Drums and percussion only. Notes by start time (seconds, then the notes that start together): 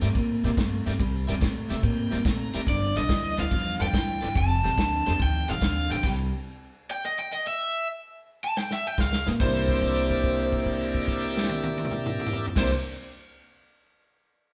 0.01 snare, ride
0.15 kick, ride
0.44 snare, ride
0.57 kick, snare, ride
0.87 snare, ride
1.00 kick, ride
1.28 snare, ride
1.41 kick, snare, ride
1.70 snare, ride
1.83 kick, ride
2.11 snare, ride
2.25 kick, snare, ride
2.53 snare, ride
2.66 kick, snare, ride
2.96 snare, ride
3.09 kick, snare, ride
3.38 snare, ride
3.51 kick, ride
3.80 snare, ride
3.93 kick, snare, ride
4.22 snare, ride
4.36 kick, ride
4.64 snare, ride
4.78 kick, snare, ride
5.06 snare, ride
5.20 kick, ride
5.48 snare, ride
5.61 kick, snare, ride
5.90 snare, ride
6.03 kick, snare, crash, ride
8.57 snare
8.71 snare
8.98 kick, snare
9.13 snare
9.27 snare
9.40 kick, crash
9.68 kick, crash
9.75 crash
9.82 kick, crash
9.96 crash
10.10 kick, crash
10.17 crash
10.24 kick, crash
10.38 crash
10.52 kick, crash
10.60 crash
10.66 kick, crash
10.81 crash
10.94 kick, crash
11.01 crash
11.08 kick, crash
11.22 crash
11.37 snare
11.44 snare
11.49 high tom
11.64 high tom
11.78 high tom
11.85 mid tom
11.91 mid tom
12.06 mid tom
12.20 mid tom
12.26 mid tom
12.33 floor tom
12.47 floor tom
12.56 kick, snare, crash